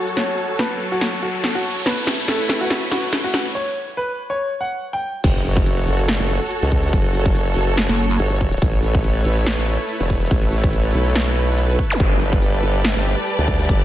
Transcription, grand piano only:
0.17 0.48 C#5 medium
0.59 0.82 B4 medium
0.92 1.14 F#4 medium
1.23 1.45 F#4 medium
1.55 1.78 F#4 medium
1.86 2.17 B4 medium
2.28 2.51 A4 medium
2.61 2.83 F#4 medium
2.92 3.14 F#4 medium
3.24 3.47 F#4 medium
3.55 3.86 C#5 loud
3.97 4.20 B4 medium
4.30 4.52 C#5 medium
4.61 4.83 F#5 medium
4.93 5.16 G5 medium

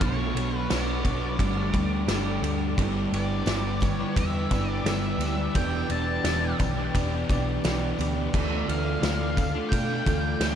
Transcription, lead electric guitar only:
0.05 0.57 C#5 medium
0.57 0.74 B4 medium
0.75 2.42 D5 medium
3.14 3.85 D5 medium
3.85 4.17 C#5 medium
4.17 4.70 E5 medium
4.70 4.88 D5 medium
4.89 5.59 E5 medium
5.55 5.91 G5 loud
5.92 6.56 A5 loud
8.69 9.75 F5 medium
9.69 10.55 G5 loud

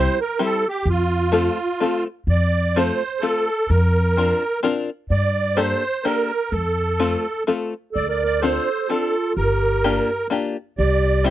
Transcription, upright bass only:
0.85 1.47 F2 medium
2.27 2.89 F2 medium
3.70 4.31 F2 medium
5.10 5.72 G2 medium
6.52 7.14 F2 medium
7.96 8.57 D2 medium
9.37 9.98 G1 medium
10.79 11.30 C2 medium

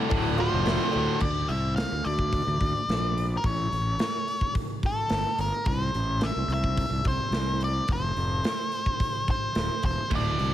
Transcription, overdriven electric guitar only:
0.09 0.35 D2 medium
0.09 0.36 A2 medium
0.09 0.37 D3 medium
0.37 0.61 D2 medium
0.37 0.62 A2 medium
0.37 0.63 D3 medium
0.62 0.89 D2 medium
0.62 0.91 A2 loud
0.62 0.91 D3 loud
0.91 1.19 D2 medium
0.91 1.19 A2 medium
0.91 1.19 D3 loud

